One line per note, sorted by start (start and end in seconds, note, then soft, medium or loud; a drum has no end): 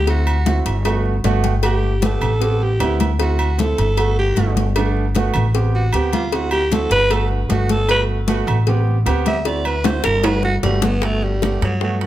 0.00 0.60 D2 loud
0.00 0.11 G4 loud
0.06 0.34 C4 medium
0.06 0.34 E4 medium
0.06 0.35 F#4 medium
0.06 0.67 F#4 medium
0.06 cowbell loud
0.06 high conga soft
0.06 low agogo medium
0.27 high conga soft
0.27 low agogo loud
0.46 0.73 C4 medium
0.46 0.74 E4 medium
0.46 0.74 F#4 medium
0.46 cowbell medium
0.46 high conga loud
0.46 low agogo medium
0.66 1.20 G1 loud
0.66 cowbell medium
0.66 high conga soft
0.66 low agogo medium
0.85 1.12 A3 medium
0.85 1.13 B3 medium
0.85 1.13 F#4 loud
0.85 cowbell loud
0.85 high conga soft
0.85 low agogo loud
1.06 high conga soft
1.24 2.16 G1 medium
1.24 1.52 A3 loud
1.24 1.52 B3 medium
1.24 1.52 F#4 loud
1.24 1.43 D5 medium
1.24 cowbell medium
1.24 high conga medium
1.24 low timbale medium
1.24 low agogo medium
1.44 1.62 G5 medium
1.44 cowbell medium
1.44 high conga loud
1.62 1.90 A3 medium
1.62 1.91 B3 medium
1.62 1.91 G4 medium
1.62 2.05 G4 medium
1.62 cowbell loud
1.62 high conga soft
1.62 low agogo loud
1.83 high conga soft
2.01 2.29 A3 medium
2.01 2.30 B3 medium
2.01 2.30 G4 medium
2.01 2.64 A4 loud
2.01 cowbell medium
2.01 high conga loud
2.01 low agogo medium
2.21 2.76 A1 loud
2.21 high conga soft
2.21 low conga medium
2.21 low agogo loud
2.40 2.68 B3 medium
2.40 2.69 C4 medium
2.40 2.69 G4 medium
2.40 cowbell loud
2.40 high conga soft
2.62 3.01 G4 loud
2.62 high conga soft
2.80 3.72 D2 loud
2.80 3.07 B3 medium
2.80 3.08 C4 medium
2.80 3.08 E4 medium
2.80 cowbell medium
2.80 high conga soft
2.80 low timbale medium
2.80 low agogo loud
3.00 cowbell medium
3.00 high conga loud
3.00 low agogo loud
3.18 3.46 C4 medium
3.18 3.47 E4 medium
3.18 3.47 F#4 medium
3.18 3.62 F#4 medium
3.18 cowbell loud
3.18 high conga soft
3.18 low agogo medium
3.39 high conga soft
3.39 low agogo loud
3.58 3.86 C4 medium
3.58 3.86 E4 medium
3.58 3.86 A4 medium
3.58 4.18 A4 loud
3.58 cowbell medium
3.58 high conga loud
3.58 low agogo medium
3.78 4.33 G1 loud
3.78 cowbell medium
3.78 high conga soft
3.78 low agogo medium
3.97 4.25 A3 medium
3.97 4.25 B3 medium
3.97 4.26 F#4 medium
3.97 cowbell loud
3.97 high conga soft
3.97 low agogo loud
4.18 4.54 G4 medium
4.18 high conga soft
4.36 5.29 G1 medium
4.36 4.64 A3 medium
4.36 4.64 B3 medium
4.36 4.65 F#4 medium
4.36 cowbell medium
4.36 high conga medium
4.36 low agogo medium
4.57 cowbell medium
4.57 high conga loud
4.76 5.03 A3 medium
4.76 5.04 B3 medium
4.76 5.04 D4 medium
4.76 cowbell loud
4.76 high conga soft
4.76 low agogo loud
4.97 high conga soft
5.15 5.42 A3 medium
5.15 5.43 B3 medium
5.15 5.43 F#4 medium
5.15 cowbell medium
5.15 high conga loud
5.15 low agogo medium
5.34 5.89 A1 loud
5.34 high conga soft
5.34 low conga medium
5.34 low agogo loud
5.54 5.82 B3 medium
5.54 5.82 C4 medium
5.54 5.82 G4 medium
5.54 cowbell loud
5.54 high conga soft
5.74 5.96 F#4 medium
5.74 high conga soft
5.93 6.85 D2 medium
5.93 6.21 B3 medium
5.93 6.21 C4 medium
5.93 6.13 G4 medium
5.93 6.21 G4 medium
5.93 cowbell medium
5.93 high conga soft
5.93 low agogo loud
6.13 6.35 F4 medium
6.13 cowbell medium
6.13 high conga medium
6.13 low agogo medium
6.32 6.60 C4 medium
6.32 6.60 E4 medium
6.32 6.52 F#4 medium
6.32 6.60 F#4 medium
6.32 cowbell loud
6.32 high conga soft
6.32 low agogo medium
6.51 6.74 G4 loud
6.51 high conga soft
6.51 low agogo loud
6.71 6.99 C4 medium
6.71 6.99 E4 medium
6.71 6.99 F#4 medium
6.71 6.91 A4 medium
6.71 cowbell medium
6.71 high conga loud
6.71 low agogo medium
6.91 7.45 G1 medium
6.91 7.13 B4 loud
6.91 cowbell medium
6.91 high conga soft
6.91 low agogo medium
7.10 7.38 A3 medium
7.10 7.38 B3 medium
7.10 7.38 F#4 medium
7.10 7.31 A4 loud
7.10 cowbell loud
7.10 high conga soft
7.10 low agogo loud
7.31 7.47 D4 soft
7.31 high conga soft
7.49 8.42 G1 medium
7.49 7.77 A3 medium
7.49 7.77 B3 medium
7.49 7.78 F#4 medium
7.49 7.72 F#4 medium
7.49 cowbell medium
7.49 high conga medium
7.49 low timbale medium
7.49 low agogo medium
7.69 7.90 A4 loud
7.69 cowbell medium
7.69 high conga medium
7.88 8.16 A3 medium
7.88 8.16 B3 medium
7.88 8.17 F#4 medium
7.88 8.02 B4 medium
7.88 cowbell loud
7.88 high conga soft
7.88 low agogo loud
8.09 high conga soft
8.27 8.55 A3 medium
8.27 8.56 B3 medium
8.27 8.56 F#4 loud
8.27 cowbell medium
8.27 high conga loud
8.27 low agogo medium
8.47 9.02 A1 loud
8.47 high conga soft
8.47 low conga medium
8.47 low agogo loud
8.67 8.95 B3 medium
8.67 8.95 C4 medium
8.67 8.95 G4 medium
8.67 cowbell loud
8.67 high conga soft
8.67 low conga medium
8.87 high conga soft
9.06 9.98 D2 medium
9.06 9.34 B3 loud
9.06 9.34 C4 medium
9.06 9.34 G4 loud
9.06 cowbell medium
9.06 high conga soft
9.06 low agogo loud
9.26 9.48 E5 loud
9.26 cowbell medium
9.26 high conga loud
9.26 low agogo medium
9.45 9.73 C4 medium
9.45 9.73 E4 medium
9.45 9.73 F#4 medium
9.45 9.68 D5 medium
9.45 cowbell loud
9.45 high conga soft
9.45 low agogo medium
9.65 9.87 B4 medium
9.65 high conga soft
9.65 low agogo loud
9.84 10.12 C4 medium
9.84 10.12 E4 medium
9.84 10.13 F#4 medium
9.84 10.04 C5 medium
9.84 cowbell medium
9.84 high bongo loud
9.84 high conga loud
9.84 high timbale medium
9.84 low agogo medium
10.04 10.60 G1 loud
10.04 10.27 A#4 loud
10.04 cowbell medium
10.04 high bongo loud
10.04 high conga soft
10.04 low agogo medium
10.23 10.51 A3 medium
10.23 10.52 B3 medium
10.23 10.52 F#4 medium
10.23 10.44 B4 loud
10.23 cowbell loud
10.23 low bongo medium
10.23 high conga soft
10.23 high timbale loud
10.23 low agogo loud
10.43 10.56 F#4 medium
10.43 low bongo medium
10.43 high conga soft
10.63 11.56 G1 medium
10.63 10.85 G3 medium
10.63 10.91 A3 medium
10.63 10.91 B3 medium
10.63 10.92 F#4 medium
10.63 cowbell medium
10.63 low bongo medium
10.63 high conga medium
10.63 low timbale medium
10.63 low agogo medium
10.82 11.06 B3 loud
10.82 cowbell medium
10.82 low bongo loud
10.82 high conga loud
10.82 low timbale medium
11.02 11.30 A3 medium
11.02 11.25 A3 loud
11.02 11.31 B3 medium
11.02 11.31 F#4 medium
11.02 high bongo medium
11.02 high conga soft
11.02 high timbale medium
11.22 11.62 G3 loud
11.22 high bongo soft
11.22 high conga soft
11.42 11.70 A3 medium
11.42 11.70 B3 medium
11.42 11.70 G4 medium
11.42 high bongo medium
11.42 high conga medium
11.42 high timbale medium
11.61 12.06 G2 medium
11.61 11.81 F#3 medium
11.61 high bongo soft
11.61 high conga soft
11.61 high timbale medium
11.81 12.01 F#3 medium
11.81 12.06 A3 medium
11.81 12.06 B3 medium
11.81 12.06 F#4 medium
11.81 high bongo medium
11.81 high conga soft
12.01 12.06 E3 medium
12.01 high conga soft
12.01 high timbale medium